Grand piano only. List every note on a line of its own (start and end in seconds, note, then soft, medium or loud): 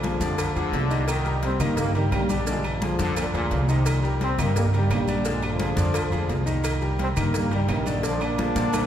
0.04 0.18 F3 medium
0.04 0.18 F4 medium
0.04 0.19 G#4 medium
0.21 0.50 D3 medium
0.21 0.50 D4 medium
0.21 0.50 D5 loud
0.56 0.84 F3 medium
0.56 0.85 F4 medium
0.56 0.85 G#4 medium
0.90 1.19 D#3 medium
0.90 1.19 D#4 medium
0.90 1.19 D#5 medium
1.26 1.54 G3 medium
1.26 1.54 G4 medium
1.26 1.54 A#4 medium
1.60 1.89 D#3 medium
1.60 1.89 D#4 medium
1.60 1.89 D#5 loud
1.94 2.23 G3 medium
1.94 2.24 G4 medium
1.94 2.23 A#4 medium
2.29 2.44 D3 medium
2.29 2.44 D4 medium
2.29 2.44 D5 medium
2.46 2.75 D3 medium
2.46 2.75 D4 medium
2.46 2.76 D5 medium
2.81 2.96 F3 medium
2.81 2.96 F4 medium
2.81 2.96 G#4 medium
2.99 3.27 D3 medium
2.99 3.28 D4 medium
2.99 3.28 D5 medium
3.33 3.62 F3 medium
3.33 3.63 F4 medium
3.33 3.63 G#4 medium
3.68 3.97 D#3 medium
3.68 3.97 D#4 medium
3.68 3.97 D#5 medium
4.03 4.32 G3 medium
4.03 4.32 G4 medium
4.03 4.32 A#4 medium
4.39 4.67 D#3 medium
4.39 4.68 D#4 medium
4.39 4.67 D#5 medium
4.73 5.02 G3 medium
4.73 5.02 G4 medium
4.73 5.02 A#4 medium
5.08 5.22 D3 medium
5.08 5.22 D4 medium
5.08 5.23 D5 medium
5.25 5.54 D3 medium
5.25 5.54 D4 loud
5.25 5.54 D5 medium
5.59 5.74 F3 medium
5.59 5.74 F4 medium
5.59 5.74 G#4 medium
5.77 6.06 D3 medium
5.77 6.06 D4 medium
5.77 6.06 D5 loud
6.12 6.41 F3 medium
6.12 6.41 F4 medium
6.12 6.41 G#4 medium
6.46 6.75 D#3 medium
6.46 6.75 D#4 medium
6.46 6.75 D#5 medium
6.82 7.10 G3 medium
6.82 7.11 G4 medium
6.82 7.11 A#4 medium
7.17 7.45 D#3 medium
7.17 7.46 D#4 medium
7.17 7.46 D#5 medium
7.51 7.80 G3 medium
7.51 7.80 G4 medium
7.51 7.80 A#4 medium
7.86 8.01 D3 medium
7.86 8.01 D4 medium
7.86 8.01 D5 medium
8.03 8.32 D3 medium
8.03 8.32 D4 medium
8.03 8.33 D5 loud
8.38 8.53 F3 medium
8.38 8.53 F4 medium
8.38 8.53 G#4 medium
8.56 8.85 D3 medium
8.56 8.85 D4 medium
8.56 8.85 D5 loud